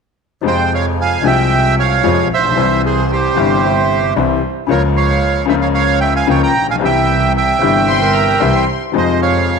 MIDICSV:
0, 0, Header, 1, 6, 480
1, 0, Start_track
1, 0, Key_signature, -4, "minor"
1, 0, Tempo, 530973
1, 403, Time_signature, 4, 2, 24, 8
1, 8672, End_track
2, 0, Start_track
2, 0, Title_t, "Violin section"
2, 0, Program_c, 0, 48
2, 7122, Note_on_c, 0, 84, 85
2, 7344, Note_off_c, 0, 84, 0
2, 7359, Note_on_c, 0, 82, 77
2, 7599, Note_on_c, 0, 84, 77
2, 7600, Note_off_c, 0, 82, 0
2, 7959, Note_off_c, 0, 84, 0
2, 8672, End_track
3, 0, Start_track
3, 0, Title_t, "Bandoneon"
3, 0, Program_c, 1, 23
3, 427, Note_on_c, 1, 79, 77
3, 429, Note_on_c, 1, 72, 65
3, 641, Note_off_c, 1, 72, 0
3, 663, Note_off_c, 1, 79, 0
3, 674, Note_on_c, 1, 77, 71
3, 675, Note_on_c, 1, 73, 55
3, 776, Note_off_c, 1, 77, 0
3, 777, Note_off_c, 1, 73, 0
3, 914, Note_on_c, 1, 80, 81
3, 917, Note_on_c, 1, 77, 60
3, 1126, Note_off_c, 1, 77, 0
3, 1141, Note_on_c, 1, 79, 90
3, 1147, Note_off_c, 1, 80, 0
3, 1150, Note_on_c, 1, 76, 68
3, 1580, Note_off_c, 1, 79, 0
3, 1585, Note_off_c, 1, 76, 0
3, 1623, Note_on_c, 1, 73, 62
3, 1624, Note_on_c, 1, 77, 76
3, 2061, Note_off_c, 1, 73, 0
3, 2062, Note_off_c, 1, 77, 0
3, 2112, Note_on_c, 1, 76, 81
3, 2118, Note_on_c, 1, 72, 60
3, 2546, Note_off_c, 1, 76, 0
3, 2549, Note_off_c, 1, 72, 0
3, 2584, Note_on_c, 1, 68, 52
3, 2588, Note_on_c, 1, 72, 64
3, 2798, Note_off_c, 1, 68, 0
3, 2815, Note_off_c, 1, 72, 0
3, 2817, Note_on_c, 1, 67, 53
3, 2829, Note_on_c, 1, 72, 68
3, 3734, Note_off_c, 1, 67, 0
3, 3740, Note_off_c, 1, 72, 0
3, 4252, Note_on_c, 1, 73, 73
3, 4260, Note_on_c, 1, 70, 58
3, 4358, Note_off_c, 1, 73, 0
3, 4364, Note_off_c, 1, 70, 0
3, 4490, Note_on_c, 1, 77, 75
3, 4494, Note_on_c, 1, 73, 64
3, 4932, Note_off_c, 1, 77, 0
3, 4934, Note_off_c, 1, 73, 0
3, 4964, Note_on_c, 1, 76, 69
3, 4970, Note_on_c, 1, 72, 59
3, 5017, Note_off_c, 1, 76, 0
3, 5022, Note_off_c, 1, 72, 0
3, 5075, Note_on_c, 1, 77, 72
3, 5086, Note_on_c, 1, 73, 56
3, 5131, Note_off_c, 1, 77, 0
3, 5139, Note_off_c, 1, 73, 0
3, 5192, Note_on_c, 1, 77, 89
3, 5194, Note_on_c, 1, 73, 65
3, 5419, Note_off_c, 1, 77, 0
3, 5420, Note_off_c, 1, 73, 0
3, 5429, Note_on_c, 1, 79, 79
3, 5436, Note_on_c, 1, 76, 65
3, 5546, Note_off_c, 1, 79, 0
3, 5550, Note_off_c, 1, 76, 0
3, 5570, Note_on_c, 1, 80, 79
3, 5571, Note_on_c, 1, 77, 63
3, 5677, Note_off_c, 1, 77, 0
3, 5688, Note_off_c, 1, 80, 0
3, 5691, Note_on_c, 1, 79, 74
3, 5700, Note_on_c, 1, 73, 60
3, 5798, Note_off_c, 1, 79, 0
3, 5802, Note_off_c, 1, 73, 0
3, 5810, Note_on_c, 1, 82, 84
3, 5815, Note_on_c, 1, 79, 67
3, 6028, Note_off_c, 1, 82, 0
3, 6030, Note_off_c, 1, 79, 0
3, 6062, Note_on_c, 1, 77, 60
3, 6063, Note_on_c, 1, 80, 80
3, 6111, Note_off_c, 1, 77, 0
3, 6111, Note_off_c, 1, 80, 0
3, 6191, Note_on_c, 1, 79, 85
3, 6192, Note_on_c, 1, 76, 62
3, 6622, Note_off_c, 1, 76, 0
3, 6622, Note_off_c, 1, 79, 0
3, 6664, Note_on_c, 1, 76, 57
3, 6670, Note_on_c, 1, 79, 79
3, 7816, Note_off_c, 1, 76, 0
3, 7819, Note_off_c, 1, 79, 0
3, 8113, Note_on_c, 1, 72, 54
3, 8115, Note_on_c, 1, 75, 69
3, 8320, Note_off_c, 1, 72, 0
3, 8322, Note_off_c, 1, 75, 0
3, 8337, Note_on_c, 1, 73, 53
3, 8337, Note_on_c, 1, 77, 76
3, 8672, Note_off_c, 1, 73, 0
3, 8672, Note_off_c, 1, 77, 0
3, 8672, End_track
4, 0, Start_track
4, 0, Title_t, "Flute"
4, 0, Program_c, 2, 73
4, 3279, Note_on_c, 2, 76, 83
4, 3764, Note_on_c, 2, 72, 74
4, 3778, Note_off_c, 2, 76, 0
4, 4124, Note_off_c, 2, 72, 0
4, 7116, Note_on_c, 2, 72, 84
4, 7229, Note_off_c, 2, 72, 0
4, 7234, Note_on_c, 2, 70, 84
4, 7716, Note_on_c, 2, 72, 71
4, 7730, Note_off_c, 2, 70, 0
4, 7958, Note_off_c, 2, 72, 0
4, 8672, End_track
5, 0, Start_track
5, 0, Title_t, "Upright piano"
5, 0, Program_c, 3, 0
5, 375, Note_on_c, 3, 48, 59
5, 386, Note_on_c, 3, 53, 70
5, 396, Note_on_c, 3, 41, 67
5, 405, Note_on_c, 3, 56, 55
5, 418, Note_on_c, 3, 65, 63
5, 1075, Note_off_c, 3, 48, 0
5, 1085, Note_off_c, 3, 53, 0
5, 1086, Note_off_c, 3, 41, 0
5, 1090, Note_off_c, 3, 56, 0
5, 1096, Note_off_c, 3, 65, 0
5, 1102, Note_on_c, 3, 48, 64
5, 1112, Note_on_c, 3, 53, 60
5, 1115, Note_off_c, 3, 48, 0
5, 1118, Note_on_c, 3, 36, 70
5, 1121, Note_on_c, 3, 48, 75
5, 1128, Note_on_c, 3, 56, 56
5, 1140, Note_on_c, 3, 65, 67
5, 1803, Note_off_c, 3, 53, 0
5, 1806, Note_off_c, 3, 36, 0
5, 1807, Note_off_c, 3, 48, 0
5, 1811, Note_off_c, 3, 56, 0
5, 1817, Note_off_c, 3, 65, 0
5, 1840, Note_on_c, 3, 48, 60
5, 1841, Note_on_c, 3, 53, 72
5, 1842, Note_on_c, 3, 56, 51
5, 1843, Note_on_c, 3, 41, 69
5, 1847, Note_on_c, 3, 65, 70
5, 2044, Note_off_c, 3, 48, 0
5, 2045, Note_off_c, 3, 56, 0
5, 2046, Note_off_c, 3, 41, 0
5, 2047, Note_off_c, 3, 53, 0
5, 2048, Note_off_c, 3, 65, 0
5, 2150, Note_on_c, 3, 33, 43
5, 2208, Note_off_c, 3, 33, 0
5, 2209, Note_on_c, 3, 34, 49
5, 2263, Note_on_c, 3, 35, 54
5, 2267, Note_off_c, 3, 34, 0
5, 2303, Note_on_c, 3, 48, 59
5, 2313, Note_on_c, 3, 52, 57
5, 2317, Note_off_c, 3, 48, 0
5, 2323, Note_on_c, 3, 36, 74
5, 2324, Note_off_c, 3, 35, 0
5, 2325, Note_on_c, 3, 48, 75
5, 2330, Note_on_c, 3, 55, 55
5, 2343, Note_on_c, 3, 64, 64
5, 3003, Note_off_c, 3, 52, 0
5, 3008, Note_off_c, 3, 36, 0
5, 3008, Note_off_c, 3, 48, 0
5, 3011, Note_off_c, 3, 55, 0
5, 3018, Note_off_c, 3, 64, 0
5, 3022, Note_on_c, 3, 48, 65
5, 3039, Note_on_c, 3, 52, 55
5, 3043, Note_on_c, 3, 31, 80
5, 3043, Note_on_c, 3, 43, 74
5, 3050, Note_on_c, 3, 55, 59
5, 3061, Note_on_c, 3, 64, 67
5, 3717, Note_off_c, 3, 48, 0
5, 3725, Note_off_c, 3, 52, 0
5, 3727, Note_off_c, 3, 31, 0
5, 3727, Note_off_c, 3, 43, 0
5, 3731, Note_off_c, 3, 55, 0
5, 3736, Note_off_c, 3, 64, 0
5, 3762, Note_on_c, 3, 48, 71
5, 3763, Note_on_c, 3, 52, 57
5, 3763, Note_on_c, 3, 55, 61
5, 3766, Note_on_c, 3, 36, 76
5, 3769, Note_on_c, 3, 64, 68
5, 3965, Note_off_c, 3, 48, 0
5, 3965, Note_off_c, 3, 52, 0
5, 3965, Note_off_c, 3, 55, 0
5, 3966, Note_off_c, 3, 36, 0
5, 3968, Note_off_c, 3, 64, 0
5, 4219, Note_on_c, 3, 49, 69
5, 4230, Note_on_c, 3, 53, 57
5, 4237, Note_on_c, 3, 37, 74
5, 4246, Note_on_c, 3, 58, 57
5, 4252, Note_on_c, 3, 65, 65
5, 4918, Note_off_c, 3, 49, 0
5, 4919, Note_off_c, 3, 53, 0
5, 4923, Note_off_c, 3, 37, 0
5, 4927, Note_off_c, 3, 58, 0
5, 4930, Note_off_c, 3, 65, 0
5, 4932, Note_on_c, 3, 49, 78
5, 4947, Note_on_c, 3, 53, 62
5, 4952, Note_on_c, 3, 37, 77
5, 4956, Note_on_c, 3, 58, 58
5, 4968, Note_on_c, 3, 65, 73
5, 5637, Note_off_c, 3, 53, 0
5, 5638, Note_off_c, 3, 49, 0
5, 5640, Note_off_c, 3, 37, 0
5, 5642, Note_off_c, 3, 58, 0
5, 5647, Note_off_c, 3, 65, 0
5, 5666, Note_on_c, 3, 49, 74
5, 5670, Note_on_c, 3, 37, 73
5, 5672, Note_on_c, 3, 53, 55
5, 5675, Note_on_c, 3, 65, 69
5, 5677, Note_on_c, 3, 58, 56
5, 5876, Note_off_c, 3, 37, 0
5, 5877, Note_off_c, 3, 53, 0
5, 5878, Note_off_c, 3, 49, 0
5, 5879, Note_off_c, 3, 65, 0
5, 5880, Note_off_c, 3, 58, 0
5, 5978, Note_on_c, 3, 33, 41
5, 6037, Note_on_c, 3, 34, 46
5, 6038, Note_off_c, 3, 33, 0
5, 6098, Note_off_c, 3, 34, 0
5, 6104, Note_on_c, 3, 35, 61
5, 6138, Note_on_c, 3, 48, 73
5, 6149, Note_on_c, 3, 52, 54
5, 6152, Note_on_c, 3, 36, 68
5, 6160, Note_on_c, 3, 55, 57
5, 6161, Note_off_c, 3, 35, 0
5, 6172, Note_on_c, 3, 64, 67
5, 6837, Note_off_c, 3, 52, 0
5, 6839, Note_off_c, 3, 36, 0
5, 6839, Note_off_c, 3, 48, 0
5, 6843, Note_off_c, 3, 55, 0
5, 6849, Note_off_c, 3, 64, 0
5, 6860, Note_on_c, 3, 48, 61
5, 6875, Note_on_c, 3, 43, 70
5, 6875, Note_on_c, 3, 52, 57
5, 6878, Note_on_c, 3, 31, 75
5, 6885, Note_on_c, 3, 55, 61
5, 6898, Note_on_c, 3, 64, 70
5, 7554, Note_off_c, 3, 48, 0
5, 7562, Note_off_c, 3, 43, 0
5, 7562, Note_off_c, 3, 52, 0
5, 7564, Note_off_c, 3, 31, 0
5, 7567, Note_off_c, 3, 55, 0
5, 7574, Note_off_c, 3, 64, 0
5, 7592, Note_on_c, 3, 52, 53
5, 7596, Note_on_c, 3, 36, 71
5, 7596, Note_on_c, 3, 55, 57
5, 7597, Note_on_c, 3, 48, 73
5, 7602, Note_on_c, 3, 64, 66
5, 7797, Note_off_c, 3, 52, 0
5, 7799, Note_off_c, 3, 36, 0
5, 7799, Note_off_c, 3, 55, 0
5, 7800, Note_off_c, 3, 48, 0
5, 7802, Note_off_c, 3, 64, 0
5, 8063, Note_on_c, 3, 48, 61
5, 8077, Note_on_c, 3, 53, 74
5, 8083, Note_on_c, 3, 41, 69
5, 8090, Note_on_c, 3, 56, 59
5, 8100, Note_on_c, 3, 63, 66
5, 8672, Note_off_c, 3, 41, 0
5, 8672, Note_off_c, 3, 48, 0
5, 8672, Note_off_c, 3, 53, 0
5, 8672, Note_off_c, 3, 56, 0
5, 8672, Note_off_c, 3, 63, 0
5, 8672, End_track
6, 0, Start_track
6, 0, Title_t, "Double bass"
6, 0, Program_c, 4, 43
6, 403, Note_on_c, 4, 41, 72
6, 1089, Note_off_c, 4, 41, 0
6, 1126, Note_on_c, 4, 36, 77
6, 1810, Note_off_c, 4, 36, 0
6, 1844, Note_on_c, 4, 41, 77
6, 2046, Note_off_c, 4, 41, 0
6, 2081, Note_on_c, 4, 34, 52
6, 2317, Note_off_c, 4, 34, 0
6, 2323, Note_on_c, 4, 36, 82
6, 3008, Note_off_c, 4, 36, 0
6, 3044, Note_on_c, 4, 31, 74
6, 3728, Note_off_c, 4, 31, 0
6, 3763, Note_on_c, 4, 36, 75
6, 3965, Note_off_c, 4, 36, 0
6, 4236, Note_on_c, 4, 37, 86
6, 4922, Note_off_c, 4, 37, 0
6, 4955, Note_on_c, 4, 37, 77
6, 5641, Note_off_c, 4, 37, 0
6, 5680, Note_on_c, 4, 37, 76
6, 5881, Note_off_c, 4, 37, 0
6, 5916, Note_on_c, 4, 34, 53
6, 6145, Note_off_c, 4, 34, 0
6, 6151, Note_on_c, 4, 36, 81
6, 6838, Note_off_c, 4, 36, 0
6, 6882, Note_on_c, 4, 31, 79
6, 7565, Note_off_c, 4, 31, 0
6, 7610, Note_on_c, 4, 36, 73
6, 7806, Note_off_c, 4, 36, 0
6, 8083, Note_on_c, 4, 41, 82
6, 8672, Note_off_c, 4, 41, 0
6, 8672, End_track
0, 0, End_of_file